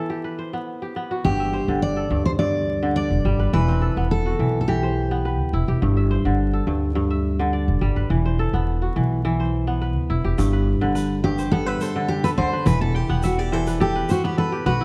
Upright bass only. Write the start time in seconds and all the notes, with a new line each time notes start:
1.24 G1
1.68 G1
2.10 D2
3.11 E1
3.25 G1
3.39 G1
3.53 E1
3.97 E1
4.39 B1
5.40 D2
5.53 E1
5.68 E1
5.82 G1
6.25 G1
6.67 D2
7.68 E1
7.82 G1
7.96 G1
8.10 E1
8.53 E1
8.96 B1
9.96 D2
10.10 E1
10.24 E1
10.39 G1
10.82 G1
12.37 D2
12.66 E1
13.10 E1
14.66 B1